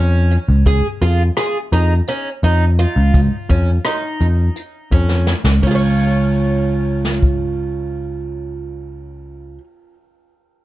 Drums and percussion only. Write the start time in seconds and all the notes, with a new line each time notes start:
0.31 closed hi-hat
0.66 kick, closed hi-hat
1.01 closed hi-hat
1.37 cross-stick, closed hi-hat
1.72 closed hi-hat
2.07 closed hi-hat
2.43 closed hi-hat
2.78 closed hi-hat
3.14 kick, closed hi-hat
3.49 kick, closed hi-hat
3.85 cross-stick, closed hi-hat
4.20 closed hi-hat
4.56 closed hi-hat
4.91 kick, closed hi-hat
5.09 snare
5.27 snare
5.45 snare
5.62 kick, ride
7.05 snare
7.23 kick